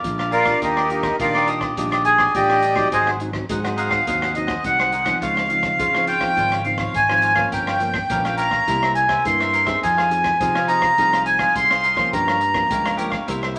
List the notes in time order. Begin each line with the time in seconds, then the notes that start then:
Already playing: A#4 D5 F5
0.04 A#1 F3 G#3 D4 F4, kick, closed hi-hat
0.18 A#4 D5 F5, cross-stick
0.31 F4 G#4 A#4 D5 F5, closed hi-hat
0.45 G3 D4 F4 A#4 D5 F5, kick, cross-stick, closed hi-hat
0.61 D#2 D#3 D4 D#4 G4 A#4 D5 D#5, kick, closed hi-hat
0.76 G4 D5 D#5, cross-stick
0.89 G3 D4 F4, muted cavaquinho stroke, closed hi-hat
1.03 kick, cross-stick, closed hi-hat
1.19 A#2 D#3 G3 D4 F4 G4 A#4 D5 D#5 F5, kick, closed hi-hat
1.34 G4 D5 D#5, cross-stick
1.47 D4 G4 D5 D#5, closed hi-hat
1.60 G4 D5 D#5, kick, cross-stick
1.77 A#1 D#3 G3 D4 F4 G4 D5 D#5, kick, closed hi-hat
1.91 G4 D5 D#5, cross-stick, closed hi-hat
2.05 G#4 G#5, muted cavaquinho stroke, closed hi-hat
2.18 G4 D5 D#5, kick, cross-stick
2.35 A1 G3 D4 F4 G4 D5 D#5 G5, kick, closed hi-hat
2.49 G4 D5 D#5, cross-stick
2.62 D4 G4 D5 D#5, closed hi-hat
2.75 F#3 C4 D#4 G4 D5 D#5, kick, cross-stick
2.92 G#1 G#2 D#4 G#4 C5 D#5 F#5 G#5, kick, closed hi-hat
3.06 G#4 C5 F#5, cross-stick
3.19 F#3 C4 D#4, muted cavaquinho stroke, closed hi-hat
3.33 F#3 C4 D#4, kick, cross-stick
3.49 G#2 D#3 F#3 C4 D#4 G#4 C5 F#5, kick, closed hi-hat
3.64 F#3 C4 D#4 G#4 C5 F#5, cross-stick, closed hi-hat
3.76 D#4 G#4 C5 F5 F#5, closed hi-hat
3.90 G#4 C5 F#5, kick, cross-stick
4.06 D#2 G#2 F#3 C4 D#4 G#4 C5 F#5, kick, closed hi-hat
4.22 G#4 C5 F#5, cross-stick
4.34 F#3 C4 D#4 D#5, muted cavaquinho stroke, closed hi-hat
4.47 G#4 C5 F#5, kick, cross-stick
4.64 C2 D#3 F#3 C4 D#4 F#5, kick, closed hi-hat
4.79 G#4 C5 F#5, cross-stick
4.92 D#4 G#4 C5 F#5, closed hi-hat
5.05 F3 C4 D#4 G#4 C5 F#5, kick, cross-stick, closed hi-hat
5.21 C#2 C#3 F4 C5 C#5 F5, kick, closed hi-hat
5.36 C5 C#5 F5, cross-stick
5.49 F3 C4 D#4, muted cavaquinho stroke, closed hi-hat
5.63 kick, cross-stick, closed hi-hat
5.79 G#2 C#3 F4 C5 C#5 F5, kick, closed hi-hat
5.94 F3 C4 D#4 C5 C#5 F5, cross-stick
6.07 F4 C5 C#5 F5 G5, closed hi-hat
6.20 F3 C4 D#4 C5 C#5 F5, kick, cross-stick
6.36 G#1 C#3 F4 C5 C#5 F5, kick, closed hi-hat
6.52 C5 C#5 F5, cross-stick, closed hi-hat
6.65 F3 C4 D#4 F5, muted cavaquinho stroke, closed hi-hat
6.78 C5 C#5 F5, kick, cross-stick
6.94 G#1 G#2 G#5, kick, closed hi-hat
7.09 F3 C4 D#4 C5 C#5 F5, cross-stick
7.22 F4 C5 C#5 F5, closed hi-hat
7.35 F3 A#3 C#4 C5 C#5 F5, kick, cross-stick
7.52 G1 G2 G4 A#4 C#5 F5 G5, kick, closed hi-hat
7.67 A#4 C#5 F5, cross-stick
7.80 F3 A#3 C#4, muted cavaquinho stroke, closed hi-hat
7.94 kick, cross-stick
8.09 A#1 G2 F3 A#3 C#4 G4 A#4 C#5 F5, kick, closed hi-hat
8.25 A#4 C#5 F5, cross-stick, closed hi-hat
8.37 G4 A#4 C#5 F5 A#5, closed hi-hat
8.51 A#4 C#5 F5, kick, cross-stick
8.67 C2 C3 G3 A#3 E4 A#4 C5 E5, kick, closed hi-hat
8.82 A#4 C5 E5, cross-stick
8.95 G#5, muted cavaquinho stroke, closed hi-hat
9.08 A#4 C5 E5, kick, cross-stick
9.25 G2 G3 A#3 E4 C6, kick, closed hi-hat
9.40 A#4 C5 E5, cross-stick
9.52 E4 A#4 C5 E5, closed hi-hat
9.66 C4 D#4 G#4 A#4 C5 E5, kick, cross-stick, closed hi-hat
9.82 F2 F3 D#4 G#4 C5 F5 G#5, kick, closed hi-hat
9.97 G#4 C5 F5, cross-stick
10.10 C4 D#4 G#4, muted cavaquinho stroke, closed hi-hat
10.24 kick, cross-stick, closed hi-hat
10.40 C3 F3 C4 D#4 G#4 C5 F5, kick, closed hi-hat
10.55 G#4 C5 F5, cross-stick
10.67 C4 D#4 G#4 C5 F5 A#5, closed hi-hat
10.81 G#4 C5 F5, kick, cross-stick
10.97 C2 F3 C4 D#4 G#4 C5 F5, kick, closed hi-hat
11.13 G#4 C5 F5, cross-stick, closed hi-hat
11.25 G#5, muted cavaquinho stroke, closed hi-hat
11.39 G#4 C5 F5, kick, cross-stick
11.55 C2 C3 C4 D#4 G#4 C6, kick, closed hi-hat
11.70 G#4 C5 F5, cross-stick
11.83 D#4 G#4 C5 F5, closed hi-hat
11.96 F3 A#3 C#4 G#4 C5 F5, kick, cross-stick
12.12 G2 G4 A#4 C#5 F5 A#5, kick, closed hi-hat
12.28 A#4 C#5 F5, cross-stick
12.41 muted cavaquinho stroke, closed hi-hat
12.54 F3 A#3 C#4, kick, cross-stick
12.70 C#2 G2 G4 A#4 C#5 F5, kick, closed hi-hat
12.85 A#4 C#5 F5, cross-stick, closed hi-hat
12.97 F3 A#3 C#4 G4 A#4 C#5 F5, closed hi-hat
13.10 A#4 C#5 F5, kick, cross-stick
13.27 C2 C3 G3 A#3 E4 A#4 C5 E5, kick, closed hi-hat
13.42 A#4 C5 E5, cross-stick
13.55 muted cavaquinho stroke